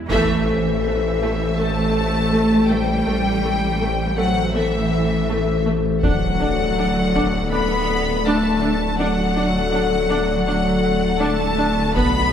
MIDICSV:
0, 0, Header, 1, 7, 480
1, 0, Start_track
1, 0, Tempo, 740741
1, 67, Time_signature, 4, 2, 24, 8
1, 7987, End_track
2, 0, Start_track
2, 0, Title_t, "Violin section"
2, 0, Program_c, 0, 48
2, 68, Note_on_c, 0, 76, 74
2, 1001, Note_off_c, 0, 76, 0
2, 1019, Note_on_c, 0, 81, 65
2, 1743, Note_off_c, 0, 81, 0
2, 1745, Note_on_c, 0, 79, 67
2, 2706, Note_off_c, 0, 79, 0
2, 2708, Note_on_c, 0, 78, 64
2, 2943, Note_off_c, 0, 78, 0
2, 2954, Note_on_c, 0, 76, 58
2, 3656, Note_off_c, 0, 76, 0
2, 3913, Note_on_c, 0, 78, 70
2, 4844, Note_off_c, 0, 78, 0
2, 4871, Note_on_c, 0, 83, 72
2, 5339, Note_off_c, 0, 83, 0
2, 5355, Note_on_c, 0, 81, 62
2, 5830, Note_on_c, 0, 78, 76
2, 5831, Note_off_c, 0, 81, 0
2, 6769, Note_off_c, 0, 78, 0
2, 6784, Note_on_c, 0, 78, 67
2, 7256, Note_off_c, 0, 78, 0
2, 7263, Note_on_c, 0, 81, 70
2, 7745, Note_off_c, 0, 81, 0
2, 7748, Note_on_c, 0, 83, 81
2, 7987, Note_off_c, 0, 83, 0
2, 7987, End_track
3, 0, Start_track
3, 0, Title_t, "Ambient pad"
3, 0, Program_c, 1, 92
3, 0, Note_on_c, 1, 59, 58
3, 0, Note_on_c, 1, 64, 59
3, 0, Note_on_c, 1, 74, 60
3, 63, Note_on_c, 1, 69, 75
3, 64, Note_on_c, 1, 52, 73
3, 64, Note_on_c, 1, 57, 74
3, 65, Note_on_c, 1, 72, 75
3, 66, Note_off_c, 1, 59, 0
3, 67, Note_off_c, 1, 64, 0
3, 67, Note_off_c, 1, 74, 0
3, 1959, Note_off_c, 1, 52, 0
3, 1959, Note_off_c, 1, 57, 0
3, 1959, Note_off_c, 1, 69, 0
3, 1960, Note_off_c, 1, 72, 0
3, 1986, Note_on_c, 1, 72, 61
3, 1988, Note_on_c, 1, 69, 62
3, 1989, Note_on_c, 1, 52, 58
3, 1989, Note_on_c, 1, 57, 60
3, 3880, Note_off_c, 1, 72, 0
3, 3881, Note_off_c, 1, 69, 0
3, 3882, Note_off_c, 1, 52, 0
3, 3882, Note_off_c, 1, 57, 0
3, 3907, Note_on_c, 1, 69, 62
3, 3909, Note_on_c, 1, 57, 64
3, 3909, Note_on_c, 1, 74, 63
3, 3912, Note_on_c, 1, 50, 63
3, 5801, Note_off_c, 1, 69, 0
3, 5802, Note_off_c, 1, 57, 0
3, 5817, Note_off_c, 1, 50, 0
3, 5820, Note_off_c, 1, 74, 0
3, 5825, Note_on_c, 1, 50, 68
3, 5826, Note_on_c, 1, 57, 65
3, 5828, Note_on_c, 1, 69, 66
3, 5828, Note_on_c, 1, 74, 63
3, 7720, Note_off_c, 1, 50, 0
3, 7720, Note_off_c, 1, 57, 0
3, 7721, Note_off_c, 1, 69, 0
3, 7721, Note_off_c, 1, 74, 0
3, 7742, Note_on_c, 1, 75, 66
3, 7743, Note_on_c, 1, 59, 65
3, 7743, Note_on_c, 1, 66, 62
3, 7746, Note_on_c, 1, 54, 69
3, 7987, Note_off_c, 1, 54, 0
3, 7987, Note_off_c, 1, 59, 0
3, 7987, Note_off_c, 1, 66, 0
3, 7987, Note_off_c, 1, 75, 0
3, 7987, End_track
4, 0, Start_track
4, 0, Title_t, "Viola section"
4, 0, Program_c, 2, 48
4, 68, Note_on_c, 2, 57, 74
4, 291, Note_off_c, 2, 57, 0
4, 309, Note_on_c, 2, 57, 39
4, 361, Note_off_c, 2, 57, 0
4, 556, Note_on_c, 2, 57, 35
4, 608, Note_off_c, 2, 57, 0
4, 793, Note_on_c, 2, 57, 53
4, 845, Note_off_c, 2, 57, 0
4, 1028, Note_on_c, 2, 57, 38
4, 1080, Note_off_c, 2, 57, 0
4, 1505, Note_on_c, 2, 57, 51
4, 1556, Note_off_c, 2, 57, 0
4, 1745, Note_on_c, 2, 57, 40
4, 1797, Note_off_c, 2, 57, 0
4, 1986, Note_on_c, 2, 57, 55
4, 2038, Note_off_c, 2, 57, 0
4, 2228, Note_on_c, 2, 57, 38
4, 2280, Note_off_c, 2, 57, 0
4, 2470, Note_on_c, 2, 57, 36
4, 2522, Note_off_c, 2, 57, 0
4, 2705, Note_on_c, 2, 57, 50
4, 2757, Note_off_c, 2, 57, 0
4, 2947, Note_on_c, 2, 57, 42
4, 2999, Note_off_c, 2, 57, 0
4, 3430, Note_on_c, 2, 57, 57
4, 3482, Note_off_c, 2, 57, 0
4, 3668, Note_on_c, 2, 57, 41
4, 3720, Note_off_c, 2, 57, 0
4, 3909, Note_on_c, 2, 62, 56
4, 3961, Note_off_c, 2, 62, 0
4, 4149, Note_on_c, 2, 62, 41
4, 4200, Note_off_c, 2, 62, 0
4, 4394, Note_on_c, 2, 62, 39
4, 4446, Note_off_c, 2, 62, 0
4, 4635, Note_on_c, 2, 62, 58
4, 4687, Note_off_c, 2, 62, 0
4, 4869, Note_on_c, 2, 62, 45
4, 4921, Note_off_c, 2, 62, 0
4, 5351, Note_on_c, 2, 62, 60
4, 5403, Note_off_c, 2, 62, 0
4, 5588, Note_on_c, 2, 62, 46
4, 5640, Note_off_c, 2, 62, 0
4, 5828, Note_on_c, 2, 62, 62
4, 5880, Note_off_c, 2, 62, 0
4, 6070, Note_on_c, 2, 62, 47
4, 6122, Note_off_c, 2, 62, 0
4, 6307, Note_on_c, 2, 62, 44
4, 6359, Note_off_c, 2, 62, 0
4, 6544, Note_on_c, 2, 62, 61
4, 6596, Note_off_c, 2, 62, 0
4, 6788, Note_on_c, 2, 62, 46
4, 6840, Note_off_c, 2, 62, 0
4, 7263, Note_on_c, 2, 62, 61
4, 7314, Note_off_c, 2, 62, 0
4, 7502, Note_on_c, 2, 62, 44
4, 7554, Note_off_c, 2, 62, 0
4, 7749, Note_on_c, 2, 59, 67
4, 7801, Note_off_c, 2, 59, 0
4, 7987, End_track
5, 0, Start_track
5, 0, Title_t, "Cello section"
5, 0, Program_c, 3, 48
5, 61, Note_on_c, 3, 52, 74
5, 998, Note_off_c, 3, 52, 0
5, 1022, Note_on_c, 3, 57, 54
5, 1730, Note_off_c, 3, 57, 0
5, 1744, Note_on_c, 3, 55, 55
5, 2705, Note_off_c, 3, 55, 0
5, 2705, Note_on_c, 3, 54, 50
5, 2941, Note_off_c, 3, 54, 0
5, 2943, Note_on_c, 3, 52, 46
5, 3665, Note_off_c, 3, 52, 0
5, 3905, Note_on_c, 3, 54, 57
5, 4840, Note_off_c, 3, 54, 0
5, 4870, Note_on_c, 3, 59, 67
5, 5348, Note_off_c, 3, 59, 0
5, 5348, Note_on_c, 3, 57, 53
5, 5818, Note_off_c, 3, 57, 0
5, 5831, Note_on_c, 3, 54, 61
5, 6770, Note_off_c, 3, 54, 0
5, 6787, Note_on_c, 3, 54, 58
5, 7257, Note_off_c, 3, 54, 0
5, 7265, Note_on_c, 3, 57, 58
5, 7736, Note_off_c, 3, 57, 0
5, 7744, Note_on_c, 3, 59, 62
5, 7987, Note_off_c, 3, 59, 0
5, 7987, End_track
6, 0, Start_track
6, 0, Title_t, "Detuned saw bass"
6, 0, Program_c, 4, 39
6, 68, Note_on_c, 4, 33, 57
6, 1961, Note_off_c, 4, 33, 0
6, 1990, Note_on_c, 4, 33, 55
6, 3908, Note_on_c, 4, 26, 58
6, 3917, Note_off_c, 4, 33, 0
6, 5817, Note_off_c, 4, 26, 0
6, 5821, Note_on_c, 4, 26, 61
6, 7745, Note_on_c, 4, 35, 59
6, 7755, Note_off_c, 4, 26, 0
6, 7987, Note_off_c, 4, 35, 0
6, 7987, End_track
7, 0, Start_track
7, 0, Title_t, "Taiko and cinematic ensemble drums"
7, 64, Note_on_c, 9, 41, 53
7, 129, Note_off_c, 9, 41, 0
7, 3909, Note_on_c, 9, 41, 57
7, 3974, Note_off_c, 9, 41, 0
7, 4636, Note_on_c, 9, 41, 33
7, 4700, Note_off_c, 9, 41, 0
7, 7750, Note_on_c, 9, 41, 59
7, 7815, Note_off_c, 9, 41, 0
7, 7987, End_track
0, 0, End_of_file